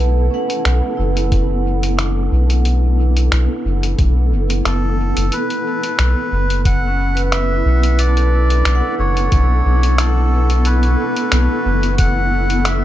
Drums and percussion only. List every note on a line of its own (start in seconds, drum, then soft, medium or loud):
0.50 closed hi-hat soft
0.65 finger snap medium
0.65 closed hi-hat soft
1.17 closed hi-hat soft
1.32 kick medium
1.32 closed hi-hat soft
1.83 closed hi-hat soft
1.99 finger snap medium
1.99 closed hi-hat soft
2.50 closed hi-hat soft
2.65 closed hi-hat soft
3.17 closed hi-hat medium
3.32 finger snap medium
3.32 closed hi-hat soft
3.83 closed hi-hat soft
3.99 kick loud
3.99 closed hi-hat soft
4.50 closed hi-hat medium
4.65 finger snap medium
4.65 closed hi-hat soft
5.17 closed hi-hat medium
5.32 closed hi-hat medium
5.50 closed hi-hat soft
5.83 closed hi-hat soft
5.99 finger snap medium
5.99 closed hi-hat medium
6.50 closed hi-hat soft
6.65 kick loud
6.65 closed hi-hat medium
7.17 closed hi-hat soft
7.32 finger snap medium
7.32 closed hi-hat soft
7.83 closed hi-hat soft
7.99 closed hi-hat medium
8.17 closed hi-hat soft
8.50 closed hi-hat soft
8.65 finger snap medium
8.65 closed hi-hat medium
9.17 closed hi-hat soft
9.32 kick loud
9.32 closed hi-hat medium
9.83 closed hi-hat soft
9.98 finger snap medium
9.98 closed hi-hat medium
10.50 closed hi-hat soft
10.65 closed hi-hat medium
10.83 closed hi-hat soft
11.16 closed hi-hat soft
11.32 finger snap medium
11.32 closed hi-hat medium
11.83 closed hi-hat soft
11.98 kick loud
11.98 closed hi-hat medium
12.50 closed hi-hat soft
12.65 finger snap medium
12.65 closed hi-hat medium